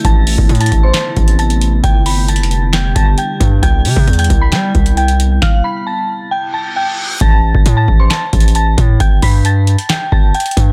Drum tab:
HH |x-----------o-----------x--x--x--x--x-----------x-----------x-----x-----x-----x-----x-----------|x-----------o-----------x---x---x---x-----------x-----------x-----------x-----------x-----------|x-----------o-----------x--x--x--x--x-----------x-----------x-----x-----x-----x-----x-----------|------------------------------------------------------------------------------------------------|
CP |------------------------------------------------x-----------------------------------------------|------------------------------------------------x-----------------------------------------------|------------------------------------------------x-----------------------------------------------|------------------------------------------------------------------------------------------------|
SD |------------------------------------------------o-----------------------------------------------|------------------------------------------------o-----------------------------------------------|------------------------------------------------o-----------------------------------------------|o-----------------------------------------------------------------------------------------------|
BD |o-----------------o-----------------o-----------------------o-----------------------------------|o-----------------------------------------------------------o-----------------------o-----------|o-----------------o-----------------o-----------------------o-----------------------------------|o-----------------------------------------------------------------------------------------------|

HH |x-----------------------x-----------------------x-----------x---x---x---x-----------x-----------|x-----------o-----------x-----------x-----x-----x-----------------------x--x--x--x--x-----------|
CP |------------------------------------------------x-----------------------------------------------|------------------------------------------------x-----------------------------------------------|
SD |------------------------------------------------o-----------------------------------------------|------------------------------------------------o-----------------------------------------------|
BD |o-----------------o-----------------o-----------------------o-----------------------o-----------|o-----------o-----------------------------------------------o-----------------------o-----------|